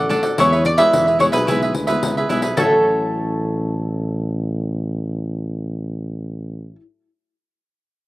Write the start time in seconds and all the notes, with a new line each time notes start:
Already playing: A1 A2
0.09 A3 D4 F#4 A4 D5 F#5, pandeiro
0.23 A4 D5 F#5, pandeiro
0.38 E2 E3 G#3 B3 E4 G#4 B4 C#5 E5, pandeiro
0.52 G#4 B4 E5, pandeiro
0.65 D5, muted cavaquinho stroke, pandeiro
0.77 G#3 B3 E4 G#4 B4 E5, pandeiro
0.93 E2 B2, pandeiro
1.07 G#4 B4 E5, pandeiro
1.19 G#3 B3 E4 G#4 B4 C#5 E5, pandeiro
1.32 B1 G#4 B4 E5, pandeiro
1.47 B1 E3 G#3 B3 E4 G#4 B4 E5, pandeiro
1.62 G#4 B4 E5, pandeiro
1.74 D2, muted cavaquinho stroke, pandeiro
1.87 G#3 B3 E4 G#4 B4 E5, pandeiro
2.02 C#2 B2, pandeiro
2.17 G#4 B4 E5, pandeiro
2.29 B1 G#3 B3 E4 G#4 B4 E5, pandeiro
2.42 G#4 B4 E5, pandeiro
2.57 A1 A2 F#3 F#4 A4 C#5 E5, pandeiro
2.61 C#4 E4